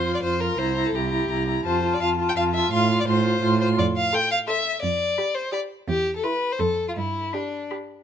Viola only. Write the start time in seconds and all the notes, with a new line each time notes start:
0.06 F4
0.24 F4
0.41 F4
0.59 E4
0.77 E4
0.95 E4
1.12 E4
1.30 E4
1.48 E4
1.66 F4
1.83 F4
2.02 F4
2.19 F4
2.37 F4
2.56 F4
2.72 F4
2.90 F4
3.07 F4
3.25 F4
3.43 F4
3.60 F4
4.13 A4
4.48 A4
5.18 G4
5.52 G4
6.24 E4
6.59 A4
7.34 G4
7.71 G4